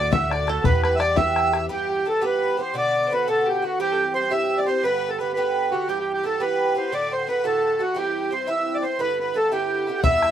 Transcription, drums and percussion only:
0.13 bodhran loud
0.31 bodhran medium
0.48 bodhran medium
0.64 bodhran loud
0.84 bodhran medium
1.00 bodhran medium
1.17 bodhran medium
1.36 bodhran medium
1.53 bodhran medium
10.04 bodhran medium
10.22 bodhran medium

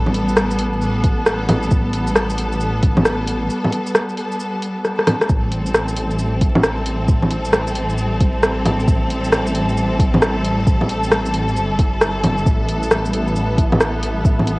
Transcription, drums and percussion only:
0.06 low bongo soft
0.14 open hi-hat medium
0.29 shaker medium
0.37 cross-stick loud
0.37 shaker medium
0.51 shaker medium
0.59 open hi-hat medium
0.73 shaker soft
0.82 shaker medium
1.04 kick loud
1.04 open hi-hat medium
1.26 cross-stick loud
1.26 shaker soft
1.49 open hi-hat medium
1.49 low bongo medium
1.63 shaker soft
1.71 kick loud
1.71 shaker medium
1.93 open hi-hat medium
2.07 shaker medium
2.16 cross-stick loud
2.16 shaker medium
2.30 shaker medium
2.38 open hi-hat medium
2.53 shaker soft
2.61 shaker medium
2.83 kick loud
2.83 open hi-hat medium
2.97 low bongo medium
3.05 cross-stick loud
3.05 shaker medium
3.28 open hi-hat medium
3.50 shaker medium
3.64 low bongo soft
3.72 open hi-hat medium
3.87 shaker medium
3.95 cross-stick loud
3.95 shaker medium
4.09 shaker medium
4.17 open hi-hat medium
4.32 shaker soft
4.40 shaker medium
4.62 open hi-hat medium
4.85 cross-stick medium
4.85 shaker medium
4.99 cross-stick medium
5.07 cross-stick medium
5.07 open hi-hat medium
5.07 low bongo medium
5.21 cross-stick medium
5.21 shaker soft
5.29 kick loud
5.29 shaker medium
5.52 open hi-hat medium
5.66 shaker medium
5.74 cross-stick loud
5.74 shaker medium
5.88 shaker medium
5.96 open hi-hat medium
6.11 shaker soft
6.19 shaker medium
6.41 kick loud
6.41 open hi-hat medium
6.55 low bongo medium
6.63 cross-stick loud
6.63 shaker medium
6.86 open hi-hat medium
7.08 kick loud
7.08 shaker medium
7.23 low bongo soft
7.31 open hi-hat medium
7.45 shaker medium
7.53 cross-stick loud
7.53 shaker medium
7.67 shaker medium
7.75 open hi-hat medium
7.90 shaker soft
7.98 shaker medium
8.20 kick loud
8.20 open hi-hat medium
8.43 cross-stick loud
8.43 shaker medium
8.65 open hi-hat medium
8.65 low bongo medium
8.80 shaker soft
8.88 kick loud
8.88 shaker medium
9.10 open hi-hat medium
9.24 shaker medium
9.32 cross-stick loud
9.32 shaker medium
9.47 shaker medium
9.55 open hi-hat medium
9.69 shaker soft
9.77 shaker medium
10.00 kick loud
10.00 open hi-hat medium
10.14 low bongo medium
10.22 cross-stick loud
10.22 shaker medium
10.45 open hi-hat medium
10.67 kick loud
10.67 shaker medium
10.81 low bongo soft
10.89 open hi-hat medium
11.04 shaker medium
11.12 cross-stick loud
11.12 shaker medium
11.26 shaker medium
11.34 open hi-hat medium
11.48 shaker soft
11.57 shaker medium
11.79 kick loud
11.79 open hi-hat medium
12.01 cross-stick loud
12.01 shaker medium
12.23 open hi-hat medium
12.23 low bongo medium
12.38 shaker soft
12.46 kick loud
12.46 shaker medium
12.68 open hi-hat medium
12.83 shaker medium
12.91 cross-stick loud
12.91 shaker medium
13.05 shaker medium
13.13 open hi-hat medium
13.27 shaker soft
13.36 shaker medium
13.58 kick loud
13.58 open hi-hat medium
13.72 low bongo medium
13.81 cross-stick loud
13.81 shaker medium
14.03 open hi-hat medium
14.25 kick loud
14.25 shaker medium
14.40 low bongo soft
14.47 open hi-hat medium

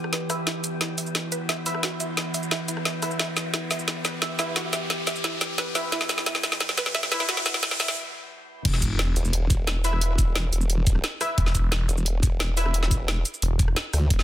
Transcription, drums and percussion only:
0.04 cross-stick soft
0.13 snare medium
0.13 closed hi-hat medium
0.30 cross-stick medium
0.30 open hi-hat medium
0.30 shaker medium
0.47 snare medium
0.47 closed hi-hat medium
0.64 closed hi-hat medium
0.64 shaker medium
0.81 snare medium
0.81 closed hi-hat medium
0.98 open hi-hat medium
0.98 shaker medium
1.06 shaker soft
1.15 snare medium
1.15 closed hi-hat medium
1.32 closed hi-hat medium
1.32 shaker medium
1.49 snare medium
1.49 closed hi-hat medium
1.66 open hi-hat medium
1.66 shaker medium
1.75 cross-stick soft
1.83 snare medium
1.83 closed hi-hat medium
2.00 closed hi-hat medium
2.00 shaker medium
2.17 snare medium
2.17 closed hi-hat medium
2.34 open hi-hat medium
2.34 shaker medium
2.43 shaker soft
2.51 snare medium
2.51 closed hi-hat medium
2.68 closed hi-hat medium
2.68 shaker medium
2.77 cross-stick soft
2.85 snare medium
2.85 closed hi-hat medium
3.02 cross-stick medium
3.02 open hi-hat medium
3.02 shaker medium
3.11 shaker soft
3.19 snare medium
3.19 closed hi-hat medium
3.37 snare medium
3.37 closed hi-hat medium
3.37 shaker medium
3.54 snare medium
3.54 closed hi-hat medium
3.71 snare medium
3.71 open hi-hat medium
3.71 shaker medium
3.79 shaker soft
3.88 snare medium
3.88 closed hi-hat medium
4.05 snare medium
4.05 closed hi-hat medium
4.05 shaker medium
4.22 snare medium
4.22 closed hi-hat medium
4.39 snare medium
4.39 open hi-hat medium
4.39 shaker medium
4.56 snare medium
4.56 closed hi-hat medium
4.73 snare medium
4.73 closed hi-hat medium
4.73 shaker medium
4.90 snare medium
4.90 closed hi-hat medium
5.07 snare medium
5.07 open hi-hat medium
5.07 shaker medium
5.16 shaker soft
5.24 snare medium
5.24 closed hi-hat medium
5.41 snare medium
5.41 closed hi-hat medium
5.41 shaker medium
5.58 snare medium
5.58 closed hi-hat medium
5.75 snare medium
5.75 open hi-hat medium
5.75 shaker medium
5.92 snare medium
5.92 closed hi-hat loud
6.01 snare medium
6.09 snare loud
6.09 closed hi-hat medium
6.09 shaker medium
6.18 snare medium
6.26 snare medium
6.26 closed hi-hat loud
6.35 snare medium
6.43 snare medium
6.43 open hi-hat medium
6.43 shaker medium
6.52 snare medium
6.52 shaker soft
6.60 snare loud
6.60 closed hi-hat medium
6.69 snare medium
6.78 snare loud
6.78 closed hi-hat medium
6.78 shaker medium
6.86 snare medium
6.95 snare loud
6.95 closed hi-hat medium
7.03 snare medium
7.12 snare loud
7.12 open hi-hat medium
7.12 shaker medium
7.20 snare medium
7.29 snare loud
7.29 closed hi-hat loud
7.37 snare medium
7.46 snare loud
7.46 closed hi-hat medium
7.46 shaker medium
7.54 snare medium
7.63 snare loud
7.63 closed hi-hat medium
7.71 snare medium
7.80 snare loud
7.80 open hi-hat medium
7.80 shaker medium
7.88 snare medium
7.88 shaker soft
8.65 kick loud
8.65 closed hi-hat loud
8.65 crash loud
8.74 snare soft
8.82 kick medium
8.82 closed hi-hat medium
8.82 shaker medium
8.99 snare loud
8.99 closed hi-hat loud
9.16 closed hi-hat medium
9.16 shaker medium
9.25 shaker soft
9.33 closed hi-hat loud
9.50 kick loud
9.50 closed hi-hat medium
9.50 shaker medium
9.67 snare loud
9.67 closed hi-hat loud
9.84 open hi-hat medium
9.84 shaker medium
9.93 cross-stick soft
10.01 closed hi-hat loud
10.18 kick medium
10.18 closed hi-hat medium
10.18 shaker medium
10.36 snare loud
10.36 closed hi-hat loud
10.53 closed hi-hat medium
10.53 shaker medium
10.61 shaker soft
10.70 closed hi-hat medium
10.87 kick loud
10.87 closed hi-hat medium
10.87 shaker medium
10.95 cross-stick soft
11.04 snare loud
11.04 closed hi-hat loud
11.21 cross-stick medium
11.21 open hi-hat medium
11.21 shaker medium
11.38 kick loud
11.38 closed hi-hat medium
11.46 snare soft
11.55 kick medium
11.55 closed hi-hat medium
11.55 shaker medium
11.72 snare loud
11.72 closed hi-hat medium
11.89 closed hi-hat medium
11.89 shaker medium
11.97 shaker soft
12.06 closed hi-hat medium
12.23 kick loud
12.23 closed hi-hat medium
12.23 shaker medium
12.40 snare loud
12.40 closed hi-hat medium
12.57 open hi-hat medium
12.57 shaker medium
12.66 cross-stick soft
12.74 closed hi-hat medium
12.83 snare soft
12.91 kick medium
12.91 closed hi-hat medium
12.91 shaker medium
13.08 snare loud
13.08 closed hi-hat medium
13.25 closed hi-hat medium
13.25 shaker medium
13.34 shaker soft
13.42 closed hi-hat medium
13.59 kick loud
13.59 closed hi-hat medium
13.59 shaker medium
13.68 cross-stick soft
13.76 snare loud
13.76 closed hi-hat medium
13.93 cross-stick medium
13.93 open hi-hat medium
13.93 shaker medium
14.10 kick loud
14.10 closed hi-hat medium
14.19 snare soft

